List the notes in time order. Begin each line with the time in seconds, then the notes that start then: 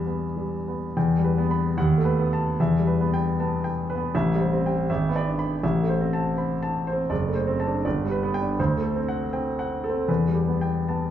Already playing: E2 G3 B3 G4 B4 E5
0.06 B3
0.36 G3
0.68 B3
0.97 E2 G5
1.18 G3
1.25 B4
1.38 B3
1.51 B5
1.77 D#2 F#5
1.98 A3
2.05 B4
2.19 B3
2.33 A5
2.60 E2 E5
2.79 G3
2.87 B4
3.01 B3
3.14 G5
3.40 B3 A5
3.64 G5
3.90 B4
3.96 B3
4.15 A1 E5
4.34 G3
4.41 C5
4.53 C4
4.66 G5
4.90 G#1 E5
5.09 B3
5.16 D5
5.28 D4
5.39 B5
5.63 A1 E5
5.83 A3
5.89 C5
6.01 C4
6.13 A5
6.38 C4 B5
6.63 A5
6.87 C5
6.93 C4
7.10 F#1 D5
7.28 A3
7.35 C5
7.47 C4
7.60 A5
7.67 D4
7.85 G1 D5
8.05 G3
8.12 B4
8.23 B3
8.34 G5
8.42 D4
8.60 D2 C5
8.77 A3
8.83 A4
8.96 C4
9.08 F#5
9.33 C4 G5
9.59 F#5
9.84 A4
9.90 C4
10.08 E2 B4
10.28 G3
10.35 G4
10.48 B3
10.61 G5
10.88 B3 A5